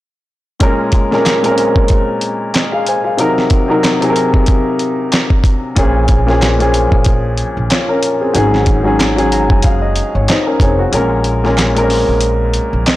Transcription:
0.60 1.06 A#2 medium
0.60 1.07 G#3 medium
0.60 1.07 C#4 medium
0.60 1.08 A#4 loud
0.60 kick loud
0.60 closed hi-hat loud
0.92 kick medium
0.92 closed hi-hat medium
1.11 1.41 A#2 medium
1.11 1.41 G#3 medium
1.11 1.42 C#4 medium
1.11 1.42 A#4 medium
1.11 snare soft
1.26 snare loud
1.26 clap medium
1.26 closed hi-hat medium
1.42 2.60 A#2 medium
1.42 2.61 G#3 medium
1.42 1.50 C4 medium
1.42 2.55 A#4 loud
1.42 closed hi-hat medium
1.51 2.65 C#4 medium
1.58 closed hi-hat medium
1.76 kick medium
1.88 kick medium
1.88 closed hi-hat medium
2.21 closed hi-hat medium
2.54 2.72 D#5 medium
2.54 snare loud
2.54 clap medium
2.54 closed hi-hat medium
2.72 2.86 G#4 medium
2.72 2.86 F5 medium
2.87 3.05 C5 medium
2.87 3.05 G#5 medium
2.87 closed hi-hat medium
3.04 3.35 G#4 medium
3.04 3.35 F5 medium
3.17 3.64 C3 medium
3.17 3.65 F#3 medium
3.17 3.65 D#4 medium
3.17 3.66 A#4 loud
3.17 closed hi-hat loud
3.38 snare soft
3.50 kick medium
3.50 closed hi-hat medium
3.68 3.98 C3 medium
3.68 3.98 F#3 medium
3.68 3.99 D#4 medium
3.68 4.00 A#4 medium
3.84 snare loud
3.84 clap medium
3.84 closed hi-hat medium
4.00 5.18 C3 medium
4.00 5.19 F#3 medium
4.00 5.19 D#4 medium
4.00 4.08 G#4 medium
4.00 closed hi-hat medium
4.10 5.23 A#4 medium
4.16 closed hi-hat medium
4.34 kick loud
4.46 kick medium
4.46 closed hi-hat medium
4.79 closed hi-hat medium
5.12 snare loud
5.12 clap medium
5.12 closed hi-hat medium
5.30 kick medium
5.44 kick loud
5.44 closed hi-hat medium
5.75 6.88 A#1 loud
5.75 6.22 A#2 medium
5.75 6.23 F3 medium
5.75 6.24 C#4 medium
5.75 6.24 G#4 medium
5.75 kick loud
5.75 closed hi-hat loud
6.08 kick medium
6.08 closed hi-hat medium
6.26 6.56 A#2 medium
6.26 6.57 F3 medium
6.26 6.57 C#4 medium
6.26 6.58 G#4 loud
6.26 snare soft
6.42 snare loud
6.42 clap medium
6.42 closed hi-hat medium
6.59 7.76 A#2 medium
6.59 7.77 F3 medium
6.59 7.71 C#4 medium
6.59 7.71 G#4 medium
6.59 closed hi-hat medium
6.74 closed hi-hat medium
6.92 7.41 A#1 medium
6.92 kick loud
7.05 kick medium
7.05 closed hi-hat medium
7.38 closed hi-hat medium
7.57 7.67 A#1 medium
7.70 7.88 F4 medium
7.70 7.88 C#5 medium
7.70 snare loud
7.70 clap medium
7.70 closed hi-hat medium
7.89 8.20 C#4 medium
7.89 8.20 A#4 medium
8.03 closed hi-hat medium
8.21 8.52 C4 medium
8.21 8.35 G#4 medium
8.33 9.50 G#1 loud
8.33 8.80 G#2 medium
8.33 8.81 F#3 medium
8.33 8.81 C#4 medium
8.33 8.82 G#4 medium
8.33 closed hi-hat loud
8.54 snare soft
8.66 kick medium
8.66 closed hi-hat medium
8.83 9.14 G#2 medium
8.83 9.14 F#3 medium
8.83 9.15 C#4 medium
8.83 9.15 G#4 medium
9.00 snare loud
9.00 clap medium
9.00 closed hi-hat medium
9.15 10.34 G#2 medium
9.15 10.34 F#3 medium
9.15 10.28 C#4 medium
9.15 10.29 G#4 loud
9.15 closed hi-hat medium
9.32 9.49 A#5 medium
9.32 closed hi-hat medium
9.49 9.99 F#1 medium
9.49 9.62 G#5 medium
9.49 kick medium
9.62 9.81 F5 medium
9.62 kick medium
9.62 closed hi-hat medium
9.81 10.12 D#5 medium
9.96 closed hi-hat medium
10.15 10.25 G#1 medium
10.15 10.28 C#5 medium
10.28 10.47 D#4 medium
10.28 10.47 C5 medium
10.28 10.59 D#5 medium
10.28 snare loud
10.28 clap medium
10.28 closed hi-hat medium
10.46 10.60 C#4 medium
10.46 10.60 A#4 medium
10.60 10.85 F1 medium
10.60 10.79 C4 medium
10.60 10.79 G#4 medium
10.60 10.91 C#5 medium
10.60 kick loud
10.60 closed hi-hat medium
10.79 11.10 A#3 soft
10.79 11.09 F#4 medium
10.92 12.04 A#1 loud
10.92 11.39 A#2 medium
10.92 11.39 G#3 medium
10.92 11.40 C#4 medium
10.92 11.40 A#4 loud
10.92 closed hi-hat loud
11.24 closed hi-hat medium
11.44 11.73 A#2 medium
11.44 11.73 G#3 medium
11.44 11.74 C#4 medium
11.44 11.75 A#4 medium
11.44 snare soft
11.57 finger snap medium
11.57 snare loud
11.57 clap medium
11.57 closed hi-hat medium
11.75 12.92 A#2 medium
11.75 12.93 G#3 medium
11.75 11.82 C4 medium
11.75 12.87 A#4 loud
11.75 closed hi-hat medium
11.83 12.96 C#4 medium
11.90 open hi-hat medium
12.09 12.57 A#1 medium
12.21 closed hi-hat loud
12.54 closed hi-hat medium
12.73 12.83 A#1 loud
12.86 12.96 D#5 medium
12.86 finger snap medium
12.86 snare loud
12.86 clap medium
12.86 closed hi-hat medium

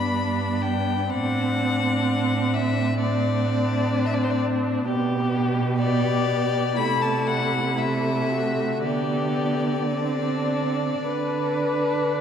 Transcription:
0.00 1.12 G2 soft
0.00 1.07 B3 soft
0.00 1.08 D4 soft
0.00 0.63 B5 medium
0.62 1.12 G5 medium
1.10 4.88 A2 soft
1.10 2.98 C4 soft
1.10 2.97 D4 soft
1.10 2.55 F#5 medium
2.54 2.99 E5 medium
3.00 4.85 C4 soft
3.00 4.85 D4 soft
3.00 4.07 D5 medium
4.06 4.16 E5 medium
4.14 4.25 D5 medium
4.24 4.33 C5 medium
4.31 4.41 D5 medium
4.88 6.78 B2 medium
4.88 5.78 B3 medium
4.88 5.78 G4 medium
5.79 6.79 B3 medium
5.79 6.77 D5 medium
5.83 6.75 G4 soft
6.76 8.85 C3 medium
6.76 7.77 A3 soft
6.76 7.76 E4 soft
6.76 7.03 B5 medium
7.01 7.28 A5 medium
7.27 7.79 F#5 medium
7.78 8.86 A3 soft
7.78 8.33 E4 soft
7.78 8.85 E5 medium
8.31 8.87 F#4 soft
8.84 11.01 D3 soft
8.84 9.94 B3 soft
8.84 9.83 G4 soft
8.84 12.12 D5 soft
9.93 11.06 C4 soft
9.93 11.05 D4 soft
11.04 12.21 D3 soft
11.04 12.21 D4 soft
11.04 12.21 B4 medium

